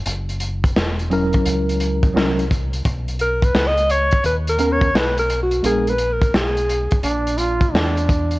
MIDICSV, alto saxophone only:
0, 0, Header, 1, 2, 480
1, 0, Start_track
1, 0, Tempo, 697674
1, 41, Time_signature, 4, 2, 24, 8
1, 5773, End_track
2, 0, Start_track
2, 0, Title_t, "Alto saxophone"
2, 0, Program_c, 0, 65
2, 2212, Note_on_c, 0, 70, 95
2, 2372, Note_on_c, 0, 71, 89
2, 2375, Note_off_c, 0, 70, 0
2, 2525, Note_on_c, 0, 75, 99
2, 2536, Note_off_c, 0, 71, 0
2, 2688, Note_on_c, 0, 73, 100
2, 2699, Note_off_c, 0, 75, 0
2, 2925, Note_off_c, 0, 73, 0
2, 2933, Note_on_c, 0, 71, 95
2, 3002, Note_off_c, 0, 71, 0
2, 3094, Note_on_c, 0, 70, 94
2, 3253, Note_on_c, 0, 73, 87
2, 3263, Note_off_c, 0, 70, 0
2, 3418, Note_on_c, 0, 71, 94
2, 3428, Note_off_c, 0, 73, 0
2, 3569, Note_off_c, 0, 71, 0
2, 3573, Note_on_c, 0, 70, 86
2, 3717, Note_off_c, 0, 70, 0
2, 3736, Note_on_c, 0, 66, 89
2, 3878, Note_off_c, 0, 66, 0
2, 3894, Note_on_c, 0, 68, 88
2, 4052, Note_on_c, 0, 71, 94
2, 4063, Note_off_c, 0, 68, 0
2, 4212, Note_on_c, 0, 70, 87
2, 4223, Note_off_c, 0, 71, 0
2, 4367, Note_off_c, 0, 70, 0
2, 4375, Note_on_c, 0, 68, 82
2, 4820, Note_off_c, 0, 68, 0
2, 5773, End_track
0, 0, End_of_file